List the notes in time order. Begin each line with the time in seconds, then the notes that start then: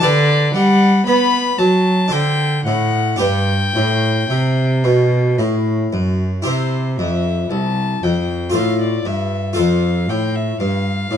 0.00 D4 G4 B4 D5
0.04 D3
0.55 G3 F#5
1.06 B3 B5
1.58 F#3 A5
2.08 D4 A4 C5
2.12 D3 G5
2.65 A2 F#5
3.16 D4 G4 B4
3.20 G2 G5
3.76 A2
4.30 C3
4.84 B2
5.38 A2
5.93 F#2
6.42 E4 G4 C5
6.47 C3
6.99 F2 E5
7.51 C2 A5
8.02 F2 G5
8.50 F4 A4 C5
8.54 A2 F5
8.81 D5
9.05 G2 E5
9.53 F4 A4 C5
9.57 F2 F5
10.09 A2 G5
10.36 E5
10.60 G2 F5
11.11 A2